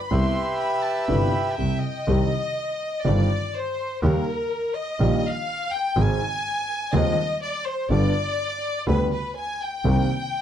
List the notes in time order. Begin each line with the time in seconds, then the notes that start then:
Already playing: B5
0.11 C2 C3 G3 B3 E4 G4 B4 E5 C6
0.58 B5
0.82 A5
1.07 G1 G2 C3 G3 B3 E4 B5
1.56 C2 C3 E5 G5
1.82 D#5
2.07 C2 C3 D#3 G3 C4 G4
3.04 G1 G2 D#3 G3 C4 G4 D5
3.54 C5
4.02 D#2 D#3 G3 A#3 G4 A#4
4.75 D#5
5.00 A#1 A#2 D#3 G3 A#3 G4
5.25 F5
5.71 G5
5.95 G#1 G#2 D#3 G#3 C4 G#4 G#5
6.93 D#1 D#2 D#3 G#3 C4 G#4 D#5
7.42 D5
7.66 C5
7.90 G1 G2 D3 G3 B3 G4 D5
8.87 D2 D3 G3 B3 G4 B4
9.12 B4
9.37 G#5
9.61 G5
9.84 C2 C3 D#3 A#3 C4 G4